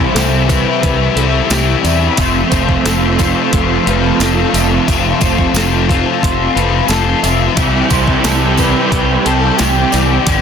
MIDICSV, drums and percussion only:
0, 0, Header, 1, 2, 480
1, 0, Start_track
1, 0, Key_signature, 0, "major"
1, 0, Tempo, 674157
1, 1554, Time_signature, 4, 2, 24, 8
1, 7416, End_track
2, 0, Start_track
2, 0, Title_t, "Drums"
2, 113, Note_on_c, 9, 54, 88
2, 114, Note_on_c, 9, 46, 76
2, 116, Note_on_c, 9, 38, 96
2, 184, Note_off_c, 9, 54, 0
2, 185, Note_off_c, 9, 46, 0
2, 188, Note_off_c, 9, 38, 0
2, 351, Note_on_c, 9, 54, 64
2, 353, Note_on_c, 9, 36, 85
2, 356, Note_on_c, 9, 46, 55
2, 422, Note_off_c, 9, 54, 0
2, 424, Note_off_c, 9, 36, 0
2, 428, Note_off_c, 9, 46, 0
2, 592, Note_on_c, 9, 36, 115
2, 593, Note_on_c, 9, 46, 74
2, 595, Note_on_c, 9, 54, 23
2, 664, Note_off_c, 9, 36, 0
2, 664, Note_off_c, 9, 46, 0
2, 666, Note_off_c, 9, 54, 0
2, 832, Note_on_c, 9, 46, 54
2, 903, Note_off_c, 9, 46, 0
2, 1069, Note_on_c, 9, 54, 86
2, 1074, Note_on_c, 9, 46, 71
2, 1077, Note_on_c, 9, 38, 104
2, 1141, Note_off_c, 9, 54, 0
2, 1145, Note_off_c, 9, 46, 0
2, 1148, Note_off_c, 9, 38, 0
2, 1315, Note_on_c, 9, 46, 49
2, 1315, Note_on_c, 9, 54, 68
2, 1386, Note_off_c, 9, 46, 0
2, 1386, Note_off_c, 9, 54, 0
2, 1548, Note_on_c, 9, 46, 71
2, 1552, Note_on_c, 9, 36, 94
2, 1553, Note_on_c, 9, 54, 62
2, 1619, Note_off_c, 9, 46, 0
2, 1623, Note_off_c, 9, 36, 0
2, 1624, Note_off_c, 9, 54, 0
2, 1792, Note_on_c, 9, 36, 85
2, 1792, Note_on_c, 9, 46, 50
2, 1792, Note_on_c, 9, 54, 71
2, 1863, Note_off_c, 9, 46, 0
2, 1863, Note_off_c, 9, 54, 0
2, 1864, Note_off_c, 9, 36, 0
2, 1913, Note_on_c, 9, 36, 89
2, 1984, Note_off_c, 9, 36, 0
2, 2033, Note_on_c, 9, 46, 69
2, 2036, Note_on_c, 9, 38, 102
2, 2038, Note_on_c, 9, 54, 87
2, 2104, Note_off_c, 9, 46, 0
2, 2107, Note_off_c, 9, 38, 0
2, 2109, Note_off_c, 9, 54, 0
2, 2269, Note_on_c, 9, 54, 64
2, 2274, Note_on_c, 9, 36, 85
2, 2275, Note_on_c, 9, 46, 54
2, 2340, Note_off_c, 9, 54, 0
2, 2345, Note_off_c, 9, 36, 0
2, 2346, Note_off_c, 9, 46, 0
2, 2512, Note_on_c, 9, 46, 77
2, 2514, Note_on_c, 9, 36, 108
2, 2583, Note_off_c, 9, 46, 0
2, 2585, Note_off_c, 9, 36, 0
2, 2757, Note_on_c, 9, 46, 57
2, 2828, Note_off_c, 9, 46, 0
2, 2991, Note_on_c, 9, 54, 87
2, 2998, Note_on_c, 9, 46, 70
2, 3001, Note_on_c, 9, 38, 98
2, 3063, Note_off_c, 9, 54, 0
2, 3069, Note_off_c, 9, 46, 0
2, 3072, Note_off_c, 9, 38, 0
2, 3235, Note_on_c, 9, 46, 62
2, 3237, Note_on_c, 9, 54, 69
2, 3306, Note_off_c, 9, 46, 0
2, 3308, Note_off_c, 9, 54, 0
2, 3475, Note_on_c, 9, 36, 112
2, 3476, Note_on_c, 9, 54, 67
2, 3477, Note_on_c, 9, 46, 68
2, 3546, Note_off_c, 9, 36, 0
2, 3547, Note_off_c, 9, 54, 0
2, 3549, Note_off_c, 9, 46, 0
2, 3708, Note_on_c, 9, 54, 73
2, 3713, Note_on_c, 9, 36, 88
2, 3714, Note_on_c, 9, 46, 59
2, 3779, Note_off_c, 9, 54, 0
2, 3784, Note_off_c, 9, 36, 0
2, 3785, Note_off_c, 9, 46, 0
2, 3834, Note_on_c, 9, 36, 82
2, 3905, Note_off_c, 9, 36, 0
2, 3947, Note_on_c, 9, 54, 96
2, 3960, Note_on_c, 9, 46, 75
2, 3963, Note_on_c, 9, 38, 109
2, 4019, Note_off_c, 9, 54, 0
2, 4032, Note_off_c, 9, 46, 0
2, 4034, Note_off_c, 9, 38, 0
2, 4197, Note_on_c, 9, 36, 81
2, 4205, Note_on_c, 9, 46, 56
2, 4268, Note_off_c, 9, 36, 0
2, 4276, Note_off_c, 9, 46, 0
2, 4436, Note_on_c, 9, 36, 111
2, 4444, Note_on_c, 9, 46, 80
2, 4508, Note_off_c, 9, 36, 0
2, 4515, Note_off_c, 9, 46, 0
2, 4679, Note_on_c, 9, 46, 56
2, 4750, Note_off_c, 9, 46, 0
2, 4901, Note_on_c, 9, 54, 85
2, 4915, Note_on_c, 9, 46, 70
2, 4918, Note_on_c, 9, 38, 109
2, 4972, Note_off_c, 9, 54, 0
2, 4986, Note_off_c, 9, 46, 0
2, 4989, Note_off_c, 9, 38, 0
2, 5152, Note_on_c, 9, 54, 73
2, 5154, Note_on_c, 9, 46, 54
2, 5224, Note_off_c, 9, 54, 0
2, 5225, Note_off_c, 9, 46, 0
2, 5388, Note_on_c, 9, 54, 76
2, 5390, Note_on_c, 9, 46, 68
2, 5392, Note_on_c, 9, 36, 113
2, 5459, Note_off_c, 9, 54, 0
2, 5461, Note_off_c, 9, 46, 0
2, 5463, Note_off_c, 9, 36, 0
2, 5627, Note_on_c, 9, 54, 69
2, 5629, Note_on_c, 9, 46, 55
2, 5631, Note_on_c, 9, 36, 86
2, 5698, Note_off_c, 9, 54, 0
2, 5701, Note_off_c, 9, 46, 0
2, 5702, Note_off_c, 9, 36, 0
2, 5750, Note_on_c, 9, 36, 84
2, 5821, Note_off_c, 9, 36, 0
2, 5868, Note_on_c, 9, 54, 96
2, 5871, Note_on_c, 9, 46, 64
2, 5874, Note_on_c, 9, 38, 103
2, 5939, Note_off_c, 9, 54, 0
2, 5942, Note_off_c, 9, 46, 0
2, 5945, Note_off_c, 9, 38, 0
2, 6105, Note_on_c, 9, 54, 69
2, 6111, Note_on_c, 9, 36, 79
2, 6112, Note_on_c, 9, 46, 49
2, 6176, Note_off_c, 9, 54, 0
2, 6182, Note_off_c, 9, 36, 0
2, 6183, Note_off_c, 9, 46, 0
2, 6350, Note_on_c, 9, 36, 106
2, 6352, Note_on_c, 9, 46, 73
2, 6422, Note_off_c, 9, 36, 0
2, 6423, Note_off_c, 9, 46, 0
2, 6592, Note_on_c, 9, 46, 59
2, 6664, Note_off_c, 9, 46, 0
2, 6824, Note_on_c, 9, 54, 89
2, 6829, Note_on_c, 9, 46, 68
2, 6832, Note_on_c, 9, 38, 113
2, 6896, Note_off_c, 9, 54, 0
2, 6900, Note_off_c, 9, 46, 0
2, 6903, Note_off_c, 9, 38, 0
2, 7064, Note_on_c, 9, 54, 69
2, 7075, Note_on_c, 9, 46, 57
2, 7136, Note_off_c, 9, 54, 0
2, 7146, Note_off_c, 9, 46, 0
2, 7309, Note_on_c, 9, 46, 78
2, 7309, Note_on_c, 9, 54, 73
2, 7311, Note_on_c, 9, 36, 108
2, 7380, Note_off_c, 9, 54, 0
2, 7381, Note_off_c, 9, 46, 0
2, 7383, Note_off_c, 9, 36, 0
2, 7416, End_track
0, 0, End_of_file